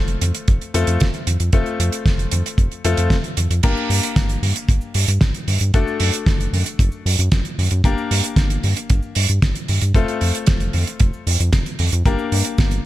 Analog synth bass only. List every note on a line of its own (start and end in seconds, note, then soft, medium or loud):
0.00 0.17 F1 medium
0.21 0.32 F2 medium
0.48 0.59 F1 loud
0.74 0.85 F2 medium
0.87 0.98 F2 medium
1.01 1.12 F1 loud
1.27 1.38 F2 medium
1.40 1.51 F2 medium
1.53 1.64 F1 loud
1.80 1.90 F2 medium
2.06 2.27 F1 medium
2.32 2.43 F2 medium
2.58 2.69 F1 medium
2.85 2.95 F2 medium
2.98 3.09 F2 medium
3.10 3.21 F1 medium
3.37 3.48 F2 medium
3.50 3.61 F2 loud
3.64 3.74 G1 medium
3.90 4.00 G2 medium
4.16 4.38 G1 medium
4.42 4.53 G2 medium
4.69 4.79 G1 loud
4.95 5.06 G2 medium
5.08 5.19 G2 loud
5.21 5.32 G1 loud
5.48 5.58 G2 medium
5.61 5.71 G2 medium
5.74 5.85 F#1 loud
6.00 6.11 F#2 medium
6.27 6.48 F#1 medium
6.53 6.64 F#2 medium
6.79 6.90 F#1 medium
7.06 7.16 F#2 medium
7.19 7.29 F#2 loud
7.32 7.43 F#1 loud
7.58 7.69 F#2 medium
7.71 7.82 F#2 medium
7.84 7.95 G1 loud
8.11 8.22 G2 medium
8.36 8.58 G1 medium
8.64 8.74 G2 medium
8.90 9.01 G1 loud
9.16 9.27 G2 medium
9.29 9.40 G2 loud
9.42 9.53 G1 loud
9.69 9.80 G2 medium
9.82 9.93 G2 loud
9.94 10.05 F1 loud
10.21 10.32 F2 medium
10.48 10.69 F1 medium
10.74 10.85 F2 medium
11.01 11.11 F1 loud
11.27 11.37 F2 medium
11.40 11.51 F2 loud
11.53 11.64 F1 loud
11.79 11.90 F2 loud
11.93 12.03 F2 medium
12.05 12.16 G1 loud
12.32 12.43 G2 medium
12.59 12.80 G1 medium